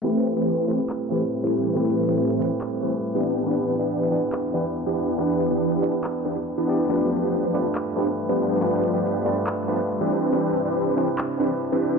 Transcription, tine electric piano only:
X:1
M:4/4
L:1/8
Q:1/4=140
K:Am
V:1 name="Tine electric piano"
[A,CEGB]3 [A,CEGB]2 [A,CEGB]3 | [A,CEGB]3 [A,CEGB]2 [A,CEGB]2 z | [B,DEGB]3 [B,DEGB]2 [B,DEGB]3 | [B,DEGB]3 [B,DEGB]2 z2 [B,DEGd] |
[A,DFGB]3 [A,DFGB]2 [A,DFGB]3 | [A,DFGB]3 [A,DFGB]2 [A,DFGB]2 z | [CDEGB]3 [CDEGB]2 [CDEGB]3 |]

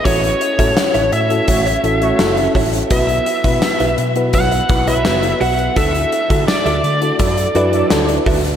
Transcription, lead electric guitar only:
X:1
M:4/4
L:1/16
Q:1/4=84
K:Bmix
V:1 name="Lead electric guitar"
c6 e8 z2 | e6 z2 f3 e3 f2 | e4 =d8- d2 z2 |]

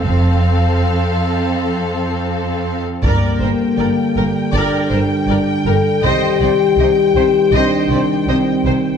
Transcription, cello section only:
X:1
M:4/4
L:1/16
Q:1/4=80
K:Gm
V:1 name="Cello section" clef=bass
F,,12- F,,3 z | G,,2 G,,2 G,,2 G,,2 G,,2 G,,2 G,,2 G,,2 | C,2 C,2 C,2 C,2 C,2 C,2 C,2 C,2 |]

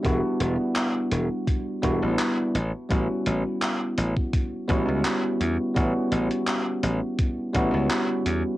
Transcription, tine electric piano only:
X:1
M:4/4
L:1/8
Q:"Swing 16ths" 1/4=84
K:Amix
V:1 name="Tine electric piano"
[G,B,DEF]4- [G,B,DEF] [G,B,DEF]2 z | [G,B,CEF]4- [G,B,CEF] [G,B,CEF]3 | [G,B,CEF]4- [G,B,CEF] [G,B,CEF]3 |]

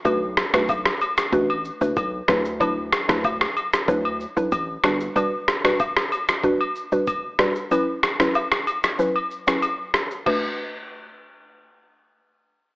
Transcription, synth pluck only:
X:1
M:4/4
L:1/16
Q:1/4=94
K:Bm
V:1 name="Synth pluck"
[A,DFB] z2 [A,DFB] z4 [A,DFB] z2 [A,DFB] z2 [F,DEB] z | [F,DEB] z2 [F,DEB] z4 [F,DEB] z2 [F,DEB] z2 [G,DFB]2 | [G,DFB] z2 [G,DFB] z4 [G,DFB] z2 [G,DFB] z2 [G,DFB] z | [F,CEB] z2 [F,CEB] z4 [F,CEB] z2 [F,CEB] z4 |
[A,DFB]16 |]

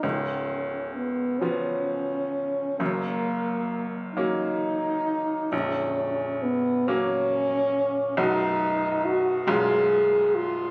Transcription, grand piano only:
X:1
M:6/8
L:1/8
Q:3/8=45
K:F#
V:1 name="Grand piano" clef=bass
[C,,,C,,]3 [E,B,C]3 | [F,,,F,,]3 [F,A,C]3 | [A,,,,A,,,]3 [F,A,C]3 | [B,,,,B,,,F,DF]3 [B,,,,B,,,G,CE]3 |]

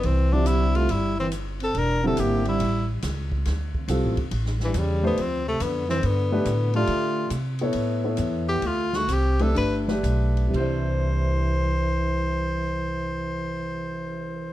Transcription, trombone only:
X:1
M:4/4
L:1/8
Q:"Swing" 1/4=140
K:C
V:1 name="Trombone" clef=bass
E, F, G, A, G, E, z C | D ^B, _B, G,2 z3 | z4 z G,, _D, =D, | F, C, D, E, D,3 A,- |
A,2 z4 z B, | A, A, C C D z3 | E,8- | E,8 |]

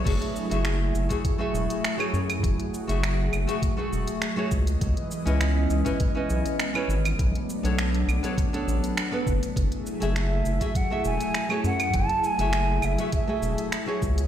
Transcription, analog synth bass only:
X:1
M:4/4
L:1/16
Q:1/4=101
K:F#m
V:1 name="Analog synth bass" clef=bass
F,,, z2 F,,,3 F,,, z3 E,,, z3 F,,2 | F,,, z2 F,,,3 F,,, z3 E,,, z3 C,,2 | C,, z2 C,,3 C,, z3 B,,, z3 G,,,2 | B,,, z2 B,,,3 B,,, z3 A,,, z3 F,,, z |
F,,, z2 F,,,3 F,,, z3 E,,, z3 F,,2 | F,,, z2 F,,,3 F,,, z3 E,,, z3 C,,2 |]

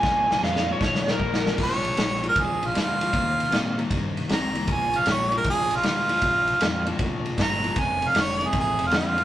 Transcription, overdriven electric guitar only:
X:1
M:4/4
L:1/8
Q:"Swing" 1/4=155
K:Eb
V:1 name="Overdriven electric guitar" clef=bass
[B,,F,]2 [B,,G,] [B,,F,] [B,,F,]2 [B,,G,] [B,,F,] | [B,,F,]2 [B,,G,] [B,,F,] [B,,F,]2 [B,,G,] [B,,F,] | [E,B,]2 [E,C] [E,B,] [E,B,]2 [E,C] [E,B,] | [B,,F,]2 [B,,G,] [B,,F,] [B,,F,]2 [B,,G,] [B,,F,] |
[B,,F,]2 [B,,G,] [B,,F,] [B,,F,]2 [B,,G,] [B,,F,] | [F,,C,]2 [F,,D,] [F,,C,] [F,,C,]2 [F,,D,] [F,,C,] |]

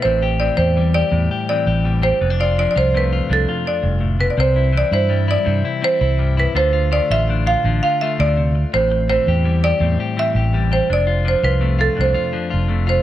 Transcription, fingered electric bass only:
X:1
M:12/8
L:1/8
Q:3/8=110
K:Am
V:1 name="Fingered electric bass" clef=bass
A,,,3 E,,3 E,, z2 A,,,3 | F,,,3 C,,3 C,, z2 F,,,3 | C,,3 G,,3 G,, z2 C,,3 | D,,3 A,,,3 A,,, z2 D,,3 |
A,,,3 E,,3 E,, z2 A,,,3 | F,,,3 C,,3 C,, z2 F,,,3 |]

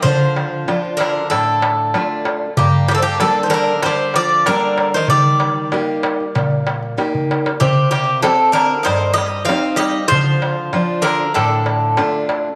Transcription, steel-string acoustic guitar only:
X:1
M:4/4
L:1/8
Q:1/4=96
K:Dphr
V:1 name="Steel-string acoustic guitar"
D,2 [F,DF]2 A,,2 [A,DF]2 | G,,2 [G,B,D]2 D,2 [G,B,D]2 | E,2 [B,EG]2 B,,2 [B,EG]2 | C,2 [CGe]2 G,,2 [CEG]2 |
D,2 [F,DF]2 A,,2 [A,DF]2 |]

